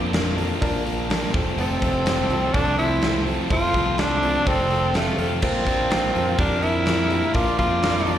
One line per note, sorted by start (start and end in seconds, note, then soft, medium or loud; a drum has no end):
0.00 0.51 F2 medium
0.00 0.11 A#2 medium
0.00 0.13 F3 medium
0.00 0.14 A#3 medium
0.00 0.14 D4 medium
0.12 0.59 A#2 medium
0.12 0.39 F3 medium
0.12 0.37 A#3 medium
0.12 0.33 D4 medium
0.12 0.35 D4 medium
0.12 0.33 F4 medium
0.12 0.33 A#4 medium
0.12 snare loud
0.12 open hi-hat medium
0.36 0.61 F3 medium
0.36 0.61 A#3 medium
0.36 0.62 D4 medium
0.36 0.57 D4 medium
0.36 0.57 F4 medium
0.36 0.57 A4 medium
0.36 open hi-hat medium
0.60 1.24 A#1 medium
0.60 1.07 A#2 medium
0.60 1.10 F3 medium
0.60 1.10 A#3 loud
0.60 0.81 D4 loud
0.60 1.11 D4 loud
0.60 0.81 F4 loud
0.60 0.81 A#4 loud
0.60 kick loud
0.60 open hi-hat medium
0.85 1.05 D4 medium
0.85 1.05 F4 medium
0.85 1.05 A#4 loud
0.85 open hi-hat medium
1.09 1.32 A#2 medium
1.09 1.34 F3 medium
1.09 1.33 A#3 medium
1.09 1.29 D4 loud
1.09 1.33 D4 medium
1.09 1.29 F4 medium
1.09 1.30 A#4 loud
1.09 snare loud
1.09 open hi-hat medium
1.33 1.55 F1 medium
1.33 1.56 F2 medium
1.33 1.56 C3 medium
1.33 1.58 F3 medium
1.33 1.59 A3 medium
1.33 1.60 C4 loud
1.33 1.73 C4 medium
1.33 1.73 F4 medium
1.33 1.73 A4 loud
1.33 kick loud
1.33 open hi-hat medium
1.57 1.78 F1 loud
1.57 2.54 F2 medium
1.57 2.05 C3 medium
1.57 1.84 F3 loud
1.57 1.82 A3 loud
1.57 2.55 C4 medium
1.57 1.80 C4 loud
1.57 open hi-hat medium
1.62 2.52 A4 medium
1.81 2.23 F1 medium
1.81 2.06 F3 medium
1.81 2.07 A3 medium
1.81 2.09 C4 medium
1.81 2.02 C4 medium
1.81 2.02 F4 medium
1.81 2.02 A4 medium
1.81 kick medium
1.81 open hi-hat medium
2.06 2.54 C3 medium
2.06 2.32 F3 medium
2.06 2.31 A3 medium
2.06 2.26 C4 medium
2.06 2.29 C4 medium
2.06 2.26 F4 medium
2.06 2.26 A4 medium
2.06 snare loud
2.06 open hi-hat loud
2.29 2.50 C2 loud
2.29 2.56 F3 medium
2.29 2.56 A3 medium
2.29 2.57 C4 medium
2.29 2.50 C4 medium
2.29 2.50 F4 medium
2.29 2.50 A4 medium
2.29 open hi-hat medium
2.54 3.36 C2 loud
2.54 3.27 F2 medium
2.54 3.01 C3 loud
2.54 3.03 F3 loud
2.54 3.03 A3 loud
2.54 2.74 C4 loud
2.54 2.78 D4 loud
2.54 2.74 F4 medium
2.54 2.74 A4 loud
2.54 2.79 A4 medium
2.54 kick loud
2.54 open hi-hat medium
2.58 3.04 C4 loud
2.78 2.97 C4 medium
2.78 3.23 E4 loud
2.78 2.98 F4 medium
2.78 2.98 A4 medium
2.78 3.23 C5 medium
2.78 open hi-hat medium
3.02 3.49 C3 medium
3.02 3.28 F3 medium
3.02 3.26 A3 medium
3.02 3.22 C4 medium
3.02 3.24 C4 medium
3.02 3.22 F4 medium
3.02 3.22 A4 medium
3.02 snare loud
3.02 open hi-hat medium
3.25 3.50 F3 medium
3.25 3.51 A3 medium
3.25 3.45 C4 medium
3.25 3.51 C4 medium
3.25 3.45 F4 medium
3.25 3.46 A4 medium
3.25 open hi-hat medium
3.49 3.71 F1 loud
3.49 3.98 F2 loud
3.49 3.96 C3 loud
3.49 3.77 F3 loud
3.49 3.74 A3 loud
3.49 3.69 C4 medium
3.49 3.72 C4 loud
3.49 3.69 F4 medium
3.49 4.01 F4 loud
3.49 3.70 A4 loud
3.49 3.99 C5 medium
3.49 kick loud
3.49 open hi-hat medium
3.73 4.36 C2 medium
3.73 3.98 F3 medium
3.73 3.98 A3 medium
3.73 3.99 C4 medium
3.73 3.94 C4 medium
3.73 3.94 F4 medium
3.73 3.94 A4 medium
3.73 kick medium
3.73 open hi-hat medium
3.97 4.46 C3 medium
3.97 4.24 F3 medium
3.97 4.22 A3 medium
3.97 4.18 C4 medium
3.97 4.21 C4 medium
3.97 4.49 D4 loud
3.97 4.18 F4 medium
3.97 4.46 A4 medium
3.97 4.18 A4 medium
3.97 snare loud
3.97 open hi-hat medium
4.22 4.48 F3 medium
4.22 4.47 A3 medium
4.22 4.41 C4 medium
4.22 4.48 C4 medium
4.22 4.41 F4 medium
4.22 4.42 A4 medium
4.22 open hi-hat medium
4.45 5.08 F1 loud
4.45 5.18 F2 medium
4.45 4.92 C3 loud
4.45 4.94 F3 medium
4.45 4.95 A3 loud
4.45 4.65 C4 loud
4.45 4.97 C4 loud
4.45 4.96 C4 loud
4.45 4.65 F4 loud
4.45 4.66 A4 loud
4.45 4.95 A4 medium
4.45 kick loud
4.45 open hi-hat medium
4.70 4.90 C4 medium
4.70 4.90 F4 medium
4.70 4.90 A4 medium
4.70 open hi-hat medium
4.93 5.41 C3 medium
4.93 5.21 F3 medium
4.93 5.31 A3 medium
4.93 5.19 A3 medium
4.93 5.14 C4 medium
4.93 5.17 C4 medium
4.93 5.14 F4 medium
4.93 5.31 F4 medium
4.93 5.14 A4 medium
4.93 snare loud
4.93 open hi-hat medium
5.18 5.39 F2 medium
5.18 5.42 F3 medium
5.18 5.42 A3 medium
5.18 5.41 C4 medium
5.18 5.38 C4 medium
5.18 5.38 F4 medium
5.18 5.38 A4 medium
5.18 open hi-hat medium
5.41 5.90 A#2 loud
5.41 5.68 F3 loud
5.41 5.67 A#3 loud
5.41 6.35 C4 medium
5.41 5.62 D4 loud
5.41 5.65 D4 loud
5.41 5.62 F4 medium
5.41 6.35 F4 medium
5.41 5.62 A#4 loud
5.41 kick loud
5.41 crash loud
5.65 6.08 A#1 medium
5.65 5.91 F3 soft
5.65 5.92 A#3 medium
5.65 5.93 D4 medium
5.65 5.86 D4 medium
5.65 5.86 F4 medium
5.65 5.87 A#4 medium
5.65 kick medium
5.65 open hi-hat medium
5.90 6.37 A#2 medium
5.90 6.16 F3 medium
5.90 6.14 A#3 medium
5.90 6.10 D4 medium
5.90 6.13 D4 medium
5.90 6.10 F4 medium
5.90 6.11 A#4 medium
5.90 snare loud
5.90 open hi-hat medium
6.14 6.36 F2 medium
6.14 6.39 F3 medium
6.14 6.39 A#3 medium
6.14 6.40 D4 medium
6.14 6.34 D4 medium
6.14 6.34 F4 medium
6.14 6.34 A#4 medium
6.14 open hi-hat medium
6.38 7.21 F2 loud
6.38 6.85 A#2 medium
6.38 6.88 F3 loud
6.38 6.88 A#3 loud
6.38 6.58 D4 loud
6.38 6.64 D4 loud
6.38 6.88 D4 loud
6.38 6.58 F4 loud
6.38 6.58 G4 loud
6.38 6.61 A#4 medium
6.38 kick loud
6.38 open hi-hat medium
6.62 6.81 D4 medium
6.62 7.36 E4 loud
6.62 6.82 F4 medium
6.62 7.35 A#4 medium
6.62 6.82 A#4 medium
6.62 open hi-hat medium
6.86 7.33 A#2 medium
6.86 7.13 F3 medium
6.86 7.11 A#3 medium
6.86 7.06 D4 medium
6.86 7.09 D4 medium
6.86 7.06 F4 medium
6.86 7.06 A#4 medium
6.86 snare loud
6.86 open hi-hat medium
7.10 7.35 F3 medium
7.10 7.35 A#3 medium
7.10 7.36 D4 medium
7.10 7.30 D4 medium
7.10 7.30 F4 medium
7.10 7.31 G4 medium
7.10 open hi-hat medium
7.34 7.55 A#1 loud
7.34 7.81 A#2 loud
7.34 7.61 F3 loud
7.34 7.59 A#3 loud
7.34 7.54 D4 loud
7.34 7.57 D4 loud
7.34 7.54 F4 medium
7.34 7.58 F4 medium
7.34 7.54 A#4 loud
7.34 7.58 D5 medium
7.34 kick loud
7.34 open hi-hat medium
7.58 8.18 F2 medium
7.58 7.83 F3 medium
7.58 7.83 A#3 medium
7.58 7.84 D4 medium
7.58 7.78 D4 medium
7.58 8.18 F4 loud
7.58 7.79 A#4 medium
7.58 8.18 D5 medium
7.58 kick medium
7.58 open hi-hat medium
7.82 8.18 A#2 medium
7.82 8.08 F3 medium
7.82 8.06 A#3 medium
7.82 8.02 D4 medium
7.82 8.04 D4 medium
7.82 8.02 F4 medium
7.82 8.03 A#4 medium
7.82 snare loud
7.82 open hi-hat medium
8.06 8.18 F3 medium
8.06 8.18 A#3 medium
8.06 8.18 D4 medium
8.06 8.18 F4 medium
8.06 8.18 A#4 medium
8.06 open hi-hat medium